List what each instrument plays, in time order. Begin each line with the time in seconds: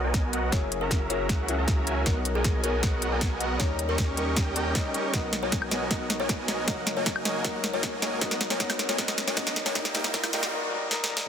Already playing: sub bass B1, grand piano F#3 B3 D#4 A#4 C#5, kalimba D#5
0.04 supersaw synth B3 F#4 A#4 D#5 G#5
0.14 kick, snare, closed hi-hat
0.33 supersaw synth B3 F#4 A#4 D#5 F#5, closed hi-hat
0.50 sub bass F#1, grand piano F#3 A#3 E4, kalimba C#5, kick, snare, closed hi-hat
0.54 grand piano G#4
0.72 closed hi-hat
0.81 supersaw synth C#4 F#4 A#4 E5 A#5, kalimba A#4
0.91 kick, snare, closed hi-hat
1.09 grand piano F#3 A#3 E4 G#4, supersaw synth C#4 F#4 A#4 E5 A#5, kalimba C#5, closed hi-hat
1.29 sub bass C#2, kick, snare, closed hi-hat
1.46 grand piano F#3 A#3 E4 G#4, closed hi-hat
1.58 supersaw synth C#4 F#4 A#4 E5 A#5
1.68 kick, snare, closed hi-hat
1.87 supersaw synth C#4 F#4 A#4 E5 G#5, closed hi-hat
2.04 sub bass B1, grand piano F#3 B3 D#4 A#4, supersaw synth B3 F#4 A#4, kalimba A#4, kick, snare, closed hi-hat
2.25 closed hi-hat
2.35 supersaw synth B3 F#4 A#4 D#5 G#5, kalimba G#4
2.44 kick, snare, closed hi-hat
2.62 grand piano F#3 B3 D#4 C#5, supersaw synth B3 F#4 A#4 D#5 G#5, kalimba A#4, closed hi-hat
2.83 supersaw synth B3 F#4 A#4 D#5 F#5, kick, snare, closed hi-hat
3.02 closed hi-hat
3.12 supersaw synth B3 F#4 A#4 D#5 G#5
3.21 kick, snare, closed hi-hat
3.40 supersaw synth B3 F#4 A#4 D#5 F#5, closed hi-hat
3.58 sub bass D#2, grand piano G3 C#4 D#4, supersaw synth C#4 G4 A#4 D#5, kalimba C#5, kick, snare, closed hi-hat
3.62 grand piano A#4
3.79 closed hi-hat
3.89 supersaw synth C#4 G4 A#4 D#5 C#6, kalimba A#4
3.98 kick, snare, closed hi-hat
4.16 grand piano G3 C#4 D#4 A#4, supersaw synth C#4 G4 A#4 D#5 C#6, kalimba G4, closed hi-hat
4.37 sub bass D#2, kick, snare, closed hi-hat
4.56 supersaw synth C#4 G4 A#4 D#5 G5, closed hi-hat
4.74 grand piano G3 C#4 D#4 D#5, kick, snare, closed hi-hat
4.85 supersaw synth C#4 G4 A#4 D#5 G5
4.94 supersaw synth C#4 G4 A#4 D#5 C#6, closed hi-hat
5.12 sub bass B1, grand piano F#3 B3 D#4, kalimba D#5, kick, snare, closed hi-hat, riser
5.16 grand piano A#4
5.33 snare, closed hi-hat
5.43 supersaw synth B3 F#4 A#4 D#5 G#5, kalimba C#5
5.52 kick, snare, closed hi-hat
5.62 high woodblock
5.69 grand piano F#3 B3 D#4, supersaw synth B3 F#4 A#4 D#5 G#5, kalimba D#5, snare, closed hi-hat
5.73 grand piano C#5
5.88 grand piano F#3 B3 D#4, supersaw synth B3 F#4 F#5, kalimba D#5, kick, snare, closed hi-hat
5.93 grand piano A#4
6.10 snare, closed hi-hat
6.20 supersaw synth B3 F#4 A#4 D#5 G#5, kalimba C#5
6.29 kick, snare, closed hi-hat
6.46 grand piano F#3 B3 D#4 C#5, supersaw synth B3 F#4 A#4 D#5 G#5, kalimba D#5, snare, closed hi-hat
6.66 sub bass F#1, grand piano F#3 A#3 D#4, supersaw synth A#3 F#4, kalimba D#5, kick, snare, closed hi-hat
6.70 grand piano A#4
6.87 snare, closed hi-hat
6.97 supersaw synth A#3 F#4 A#4 D#5 G#5, kalimba C#5
7.06 kick, snare, closed hi-hat
7.16 high woodblock
7.23 grand piano F#3 A#3 D#4, supersaw synth A#3 F#4 A#4 D#5 G#5, kalimba D#5, snare, closed hi-hat
7.27 grand piano C#5
7.43 sub bass C#2, grand piano F#3 A#3 D#4, supersaw synth A#3 D#5, kalimba D#5, kick, snare, closed hi-hat
7.47 grand piano A#4
7.64 snare, closed hi-hat
7.74 supersaw synth A#3 F#4 A#4 D#5 G#5, kalimba C#5
7.83 kick, snare, closed hi-hat
8.00 grand piano F#3 A#3 D#4, supersaw synth A#3 F#4 A#4 D#5 G#5, kalimba D#5, snare, closed hi-hat
8.05 grand piano C#5
8.20 sub bass B1, grand piano F#3 B3 D#4 A#4, supersaw synth B3 F#4 A#4 D#5, kalimba D#5, kick, snare, closed hi-hat
8.31 snare
8.41 snare, closed hi-hat
8.50 supersaw synth B3 F#4 A#4 D#5 G#5, kalimba C#5, snare
8.58 grand piano F#3 B3 D#4, supersaw synth B3 F#4 D#5 F#5, kalimba D#5, kick, snare, closed hi-hat
8.62 grand piano A#4
8.70 snare, high woodblock
8.79 snare, closed hi-hat
8.89 supersaw synth B3 F#4 A#4 D#5 G#5, kalimba C#5, snare
8.97 grand piano F#3 B3 D#4, supersaw synth B3 F#4 A#4 D#5 F#5, kalimba D#5, kick, snare, closed hi-hat
9.01 grand piano A#4
9.08 snare
9.18 snare, closed hi-hat
9.27 supersaw synth B3 F#4 A#4 D#5 G#5, kalimba C#5, snare
9.35 grand piano F#3 B3 D#4, supersaw synth B3 F#4 A#4 D#5 F#5, kalimba D#5, kick, snare, closed hi-hat
9.39 grand piano A#4
9.47 snare
9.56 snare, closed hi-hat
9.66 supersaw synth B3 F#4 A#4 D#5 G#5, kalimba C#5, snare
9.73 sub bass D#2, grand piano G3 A#3 D#4 A#4, supersaw synth A#3 G4 A#4 D#5 G5, kalimba D#5, kick, snare, closed hi-hat
9.85 snare
9.92 grand piano G3 A#3 D#4, supersaw synth A#3 G4 A#4 D#5 G5, kalimba D#5, snare, closed hi-hat
9.97 grand piano A#4
10.04 snare
10.12 grand piano G3 A#3 D#4, supersaw synth A#3 G4 A#4 D#5 G5, kalimba D#5, kick, snare, closed hi-hat
10.16 grand piano A#4
10.24 snare, high woodblock
10.31 grand piano G3 A#3 D#4, supersaw synth A#3 G4 A#4 D#5 G5, kalimba D#5, snare, closed hi-hat
10.35 grand piano A#4
10.43 snare
10.50 grand piano G3 A#3 D#4
10.54 grand piano A#4
10.70 grand piano G3 A#3 D#4 A#4
10.89 grand piano G3 A#3 D#4, snare
10.93 grand piano A#4
11.04 snare
11.08 grand piano G3 A#3 D#4 A#4
11.17 snare